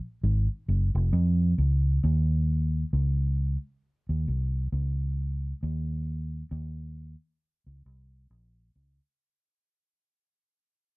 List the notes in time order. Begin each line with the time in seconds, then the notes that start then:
0.23 G#1
0.68 F#1
0.95 F1
1.13 F2
1.58 C#2
2.04 D#2
2.93 C#2
4.09 D#2
4.28 C2
4.72 C#2
5.63 D#2
6.51 D#2
7.66 C#2
7.86 C2
8.30 A#1
8.76 C#2